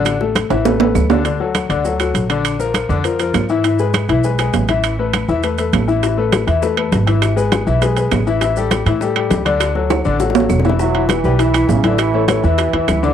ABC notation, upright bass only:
X:1
M:4/4
L:1/8
Q:1/4=201
K:Edor
V:1 name="Upright bass" clef=bass
A,,,3 A,,,3 D,,2- | D,,3 D,,3 _B,,,2- | _B,,,3 =F,,3 ^G,,2- | ^G,,3 B,,,3 A,,,2- |
A,,,3 E,,3 A,,,2- | A,,,3 E,,3 ^G,,,2- | ^G,,,3 B,,,3 A,,,2- | A,,,3 A,,3 D,,2- |
D,,3 A,,,3 E,,,2- | E,,,3 B,,,3 A,,,2- | A,,,3 E,,2 E,, D,,2 |]